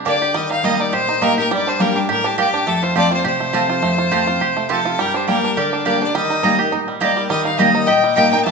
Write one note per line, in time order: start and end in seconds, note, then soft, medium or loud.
0.00 0.34 G3 medium
0.00 0.21 G4 medium
0.05 0.34 D3 medium
0.05 0.15 A#3 medium
0.05 0.35 D4 medium
0.05 0.15 G4 medium
0.05 0.16 D5 medium
0.05 0.37 D5 loud
0.05 0.16 G5 medium
0.22 0.93 G4 medium
0.34 0.90 D#3 medium
0.34 0.63 G3 medium
0.34 0.50 D#5 loud
0.51 0.78 D#4 medium
0.51 0.66 F5 loud
0.63 0.91 G3 medium
0.63 1.05 G3 medium
0.63 0.74 A#3 medium
0.63 0.92 A#3 medium
0.63 0.92 D#4 medium
0.63 0.74 G4 loud
0.63 0.92 G4 medium
0.63 0.74 D#5 medium
0.63 0.82 D#5 medium
0.63 0.74 A#5 medium
0.80 1.08 D#4 medium
0.80 0.95 D5 medium
0.93 1.48 A#2 medium
0.93 1.34 G4 medium
0.93 1.24 C5 loud
1.09 1.21 D#4 medium
1.21 1.37 G3 medium
1.21 1.31 A#3 medium
1.21 1.37 A#3 medium
1.21 1.51 D#4 medium
1.21 1.37 D#4 medium
1.21 1.32 G4 medium
1.21 1.36 G4 loud
1.21 1.38 A#4 loud
1.21 1.32 D#5 medium
1.21 1.32 A#5 loud
1.37 1.51 D#4 medium
1.37 1.50 G4 medium
1.37 1.51 G4 medium
1.37 1.51 A#4 medium
1.51 2.06 G2 medium
1.51 1.79 G3 medium
1.51 1.70 D5 loud
1.67 1.95 D4 medium
1.67 1.82 C5 medium
1.80 1.95 G3 medium
1.80 2.22 G3 medium
1.80 1.90 A#3 medium
1.80 1.95 A#3 medium
1.80 1.95 D4 medium
1.80 1.90 G4 medium
1.80 1.94 G4 medium
1.80 1.98 A#4 medium
1.80 1.90 D5 medium
1.80 1.90 G5 medium
1.96 2.23 D4 medium
1.96 2.09 D4 medium
1.96 2.08 G4 medium
1.96 2.09 G4 medium
2.09 2.37 A2 medium
2.09 2.37 G4 medium
2.09 2.27 A#4 medium
2.24 2.52 D4 medium
2.24 2.39 G4 loud
2.38 2.65 G2 medium
2.38 2.48 A#3 medium
2.38 2.67 G4 medium
2.38 2.48 G4 medium
2.38 2.70 G4 medium
2.38 2.48 D5 loud
2.38 2.48 G5 loud
2.54 2.67 D4 medium
2.67 3.22 F2 medium
2.67 3.08 A3 medium
2.67 2.84 A4 medium
2.83 3.10 F4 medium
2.83 2.96 C5 medium
2.95 3.11 F3 medium
2.95 3.11 A3 medium
2.95 3.05 C4 medium
2.95 3.11 C4 medium
2.95 3.06 F4 medium
2.95 3.10 F4 medium
2.95 3.23 G4 medium
2.95 3.06 C5 medium
2.95 3.11 D5 medium
2.95 3.06 A5 medium
3.11 3.25 C4 soft
3.11 3.24 F4 medium
3.11 3.51 F4 medium
3.11 3.25 C5 medium
3.24 3.80 C3 medium
3.24 3.52 G4 medium
3.24 4.67 C5 medium
3.40 3.80 A3 medium
3.53 3.81 F3 medium
3.53 3.81 A3 medium
3.53 3.63 C4 medium
3.53 3.82 C4 medium
3.53 3.64 F4 medium
3.53 3.82 F4 medium
3.53 3.95 G4 medium
3.53 3.64 C5 loud
3.53 3.64 A5 loud
3.69 3.97 F4 medium
3.82 4.38 F2 medium
3.82 4.24 A3 medium
3.98 4.26 F4 medium
4.11 4.26 F3 medium
4.11 4.27 A3 medium
4.11 4.21 C4 medium
4.11 4.27 C4 medium
4.11 4.21 F4 medium
4.11 4.25 F4 loud
4.11 4.40 G4 medium
4.11 4.21 C5 loud
4.11 4.22 A5 medium
4.26 4.41 C4 soft
4.26 4.40 F4 medium
4.26 4.67 F4 medium
4.40 4.96 C3 medium
4.40 4.68 G4 medium
4.57 4.96 A3 medium
4.69 4.97 F2 medium
4.69 4.79 C4 medium
4.69 4.79 F4 medium
4.69 5.00 F4 medium
4.69 4.99 G4 soft
4.69 5.02 A4 medium
4.69 4.79 C5 medium
4.69 4.80 A5 loud
4.85 4.99 F4 medium
4.99 5.54 G2 medium
4.99 5.28 G3 medium
4.99 5.14 G4 medium
4.99 5.18 A#4 medium
5.14 5.43 D4 medium
5.14 5.27 G4 medium
5.14 5.28 C5 medium
5.27 5.55 G3 medium
5.27 6.14 G3 medium
5.27 5.37 A#3 medium
5.27 5.56 A#3 medium
5.27 5.56 D4 medium
5.27 5.37 G4 medium
5.27 5.58 G4 medium
5.27 5.56 G4 loud
5.27 5.59 A#4 medium
5.27 5.37 D5 medium
5.27 5.38 G5 medium
5.44 5.72 D4 medium
5.57 6.12 D3 medium
5.57 5.85 G4 medium
5.57 5.85 A#4 medium
5.57 5.86 D5 medium
5.73 6.01 D4 medium
5.85 6.01 G3 medium
5.85 5.95 A#3 medium
5.85 6.01 A#3 medium
5.85 6.01 D4 medium
5.85 5.95 G4 medium
5.85 6.58 G4 medium
5.85 6.00 G4 medium
5.85 6.01 A#4 medium
5.85 5.95 D5 medium
5.85 6.01 D5 medium
5.85 5.95 G5 loud
6.02 6.15 D4 medium
6.02 6.15 D4 soft
6.02 6.14 G4 medium
6.02 6.14 A#4 medium
6.02 6.15 D5 medium
6.15 6.70 D#3 medium
6.15 6.56 G3 medium
6.15 6.69 A#4 medium
6.15 6.69 D#5 medium
6.30 6.42 D#4 medium
6.43 6.58 G3 medium
6.43 6.53 A#3 medium
6.43 6.59 A#3 medium
6.43 6.71 D#4 medium
6.43 6.59 D#4 loud
6.43 6.53 G4 medium
6.43 6.57 G4 loud
6.43 6.53 D#5 medium
6.43 6.53 A#5 loud
6.59 6.72 D#4 soft
6.59 6.72 G4 medium
6.59 6.99 G4 medium
6.72 7.28 A#2 medium
6.72 7.14 D#4 medium
6.88 7.16 G3 medium
7.00 7.29 G3 medium
7.00 7.11 A#3 medium
7.00 7.29 A#3 medium
7.00 7.29 D#4 medium
7.00 7.11 G4 medium
7.00 7.43 G4 medium
7.00 7.29 G4 medium
7.00 7.29 A#4 medium
7.00 7.28 D5 medium
7.00 7.11 D#5 loud
7.00 7.11 A#5 loud
7.17 7.29 G3 medium
7.29 7.85 D#3 medium
7.29 7.72 G3 medium
7.29 7.45 A#4 medium
7.29 7.44 D#5 medium
7.45 7.73 D#4 medium
7.45 7.58 D5 medium
7.45 7.59 F5 medium
7.58 7.87 G3 medium
7.58 7.69 A#3 medium
7.58 7.87 A#3 medium
7.58 7.87 D#4 loud
7.58 7.87 G4 medium
7.58 7.69 G4 medium
7.58 7.88 G4 medium
7.58 7.87 A#4 medium
7.58 7.88 D#5 medium
7.58 7.69 D#5 medium
7.58 7.69 A#5 medium
7.75 8.14 D#4 medium
7.86 8.43 A#2 medium
7.86 8.16 G4 medium
7.86 8.15 D#5 medium
7.86 8.15 G5 medium
8.04 8.43 G3 medium
8.15 8.32 G3 medium
8.15 8.26 A#3 medium
8.15 8.32 A#3 medium
8.15 8.32 D#4 loud
8.15 8.27 G4 medium
8.15 8.46 G4 medium
8.15 8.31 G4 loud
8.15 8.30 D#5 medium
8.15 8.27 D#5 medium
8.15 8.30 G5 loud
8.15 8.27 A#5 loud
8.31 8.46 D#4 medium
8.31 8.45 G4 medium
8.31 8.45 D#5 medium
8.31 8.44 G5 loud
8.45 8.51 F2 medium
8.45 8.51 A3 medium
8.45 8.51 F5 medium
8.45 8.51 A5 loud